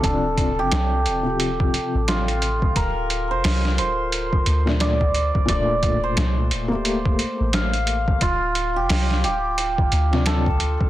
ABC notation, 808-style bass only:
X:1
M:4/4
L:1/16
Q:"Swing 16ths" 1/4=88
K:Dm
V:1 name="808-style bass" clef=bass
D,,,3 F,,, C,,2 D,,,4 z A,,,4- A,,, | D,,,3 F,,, C,,2 D,,,4 D,,4- D,, z | D,,,3 F,,, C,,2 D,,,4 z A,,,4- A,,, | D,,,3 F,,, C,,2 D,,,4 D,,4- D,, z |]